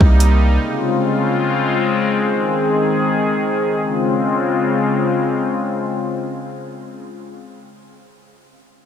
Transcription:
Already playing: C3 G3 A#3 D#4, downlifter
0.01 C2, kick
0.20 closed hi-hat
0.61 C#3 G#3 C4 F4
2.22 D#3 G#4
3.83 C#3 G#3 C4 F4

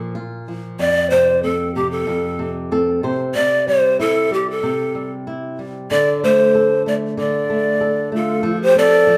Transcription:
Already playing: A#2 F3
0.15 F4
0.48 F3
0.79 F2 D5
1.10 C3 C5
1.43 C4 A4
1.75 C3 G4
1.91 A4
2.07 F2
2.39 C3
2.71 C4 A4
3.03 C3 C5
3.35 C3 D5
3.67 G3 C5
4.00 E4 A4
4.31 G3 G4
4.50 A4
4.63 C3
4.95 G3
5.27 E4
5.59 G3
5.91 D3 D5
6.23 A3 C5
6.55 A4
6.86 A3 D5
7.17 D3 D5
7.50 A3
7.81 A4
8.12 A3 F4 A4
8.43 F3
8.61 G4 C5
8.75 C4 A4 D5
9.07 F3

